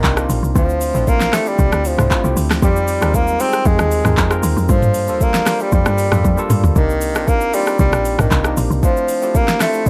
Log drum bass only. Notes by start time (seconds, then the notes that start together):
0.04 C2
0.29 A#1
0.43 C2
0.56 D2
0.95 A#1
1.59 C2
1.72 D2
1.98 C2
2.24 C2
2.37 D2
2.63 F2
3.02 D#2
3.66 F2
3.79 D#2
4.05 D#2
4.18 F2
4.43 D#2
4.57 F2
4.69 G2
5.09 D#2
5.72 F2
5.86 G2
6.12 F2
6.25 F2
6.50 G2
6.64 D2
6.76 C2
7.15 A#1
7.79 C2
7.93 A#1
8.19 A#1
8.32 C2
8.57 A#1
8.70 C2